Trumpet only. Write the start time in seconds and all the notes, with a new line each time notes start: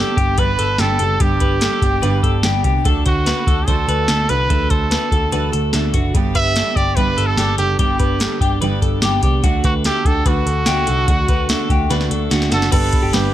0.00 G4
0.39 B4
0.80 A4
1.21 G4
3.07 F#4
3.68 A4
4.30 B4
4.71 A4
6.35 E5
6.76 D5
6.96 B4
7.27 A4
7.58 G4
7.79 G4
9.65 F#4
9.86 G4
10.06 A4
10.28 F#4
12.53 A4
12.73 A4
13.14 G4